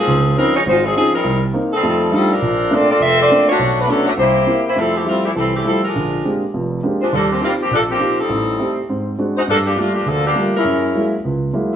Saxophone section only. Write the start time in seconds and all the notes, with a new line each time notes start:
Already playing: F3 C4 D#4 G#4
0.38 G3 C4 D#4 A#4
0.55 G#3 D#4 F4 C#5
0.67 G#3 D#4 F4 C5
0.84 F3 C4 D#4 G#4
0.96 F3 C4 D#4 G#4
1.13 G3 C4 D#4 A#4
1.73 G3 C4 D#4 A4
2.14 G3 C4 D#4 A4
2.33 F3 C4 D4 A#4
2.73 C4 F4 A4 D5
2.90 C4 F4 A4 D5
3.01 C4 F4 A4 E5
3.20 C4 F4 A4 D5
3.49 A3 D4 F#4 C#5
3.78 A3 D4 F#4 B4
3.88 F#3 C#4 D4 A4
4.05 A3 D4 F#4 C#5
4.18 A#3 E4 G4 C5
4.67 A#3 E4 G4 C5
4.79 G3 C4 E4 A4
4.96 E3 A3 C4 G4
5.08 G3 A3 C4 F4
5.24 E3 A3 C4 G4
5.37 G3 C4 E4 A4
5.54 E3 A3 C4 G4
5.66 G3 C4 E4 A4
5.85 G#3 D4 F4 A#4
7.01 G#3 D4 F4 C5
7.13 F3 A#3 D4 A4
7.31 F3 A#3 C4 G4
7.44 G3 A#3 C4 F4
7.61 F3 A#3 C4 G4
7.72 F3 A#3 D4 A4
7.90 F3 A#3 C4 G4
8.20 G3 C4 D#4 A4
9.36 G#3 D#4 F#4 C5
9.48 F3 A#3 D4 A4
9.66 F3 A#3 D4 G4
9.78 A3 A#3 D4 F4
9.95 F3 A#3 D4 G4
10.08 F3 A#3 D4 A4
10.26 F3 A#3 D4 G4
10.55 G#3 C#4 E4 A#4
11.73 G#3 E4 C5